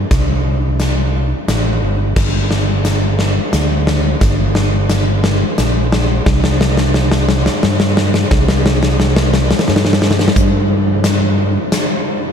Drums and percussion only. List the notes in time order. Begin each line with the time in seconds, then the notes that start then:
0.11 kick, snare, closed hi-hat
0.80 snare, closed hi-hat
1.48 snare, closed hi-hat
2.16 kick, snare, crash
2.51 snare
2.85 snare, closed hi-hat
3.19 snare
3.53 snare, closed hi-hat
3.87 snare
4.21 kick, snare, closed hi-hat
4.55 snare
4.90 snare, closed hi-hat
5.24 snare
5.58 snare, closed hi-hat
5.92 snare
6.26 kick, snare
6.44 snare
6.61 snare
6.77 snare
6.94 snare
7.12 snare
7.29 snare
7.46 snare
7.63 snare
7.80 snare
7.97 snare
8.14 snare
8.31 kick, snare
8.48 snare
8.66 snare
8.83 snare
9.00 snare
9.16 snare
9.34 snare
9.51 snare
9.59 snare
9.68 snare
9.76 snare
9.85 snare
9.93 snare
10.02 snare
10.11 snare
10.19 snare
10.28 snare
10.36 kick, closed hi-hat
11.04 snare, closed hi-hat
11.72 snare, closed hi-hat